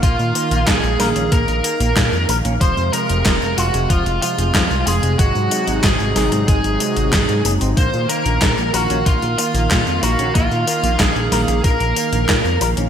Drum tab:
HH |x-xxx-oxxxxxx-ox|x-xxx-oxxxxxx-ox|x-xxx-oxxxxxxxox|x-xxx-oxxxxxx-ox|
TB |xxxxxxxxxxxxxxxx|xxxxxxxxxxxxxxxx|xxxxxxxxxxxxxxxx|xxxxxxxxxxxxxxxx|
CP |----x-------x---|----x-------x---|----x-------x---|----x-------x---|
SD |----o-o-----o---|----o-------o---|----o-o-----o---|----o-------o---|
BD |o---o---o---o---|o---o---o---o---|o---o---o---o---|o---o---o---o---|

HH |x-xxx-oxxxxxx-ox|
TB |xxxxxxxxxxxxxxxx|
CP |----x-------x---|
SD |----o-o-----o---|
BD |o---o---o---o---|